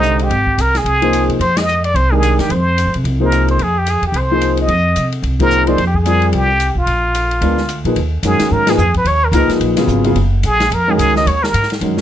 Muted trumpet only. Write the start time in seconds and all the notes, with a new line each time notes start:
Already playing: D#4
0.23 G4
0.61 A#4
0.77 G#4
1.41 C5
1.57 D#5
1.85 D5
1.96 C5
2.12 G#4
2.40 G4
2.52 C5
3.25 A#4
3.51 C5
3.63 G#4
3.78 G4
3.90 G#4
4.07 G4
4.18 C5
4.61 D#5
5.42 A#4
5.68 C5
5.87 G4
5.96 G#4
6.34 G4
6.78 F4
8.26 G#4
8.52 A#4
8.70 G#4
8.97 B4
9.07 C#5
9.25 A#4
10.47 G#4
10.74 A#4
10.90 G#4
11.17 D#5
11.27 C#5
11.43 A#4